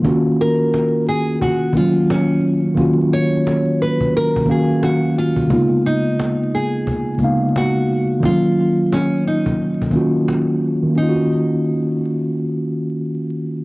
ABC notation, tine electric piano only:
X:1
M:4/4
L:1/8
Q:"Swing 16ths" 1/4=88
K:Ebm
V:1 name="Tine electric piano"
[E,B,DFG]3 z2 [E,G,B,DF]3 | [E,B,DFG]3 z2 [E,B,DGf]3 | [D,A,B,CEF]3 z2 [D,A,B,CEf]3 | [E,G,B,DF]3 z2 [E,B,DFG]3 |
[E,B,DFG]8 |]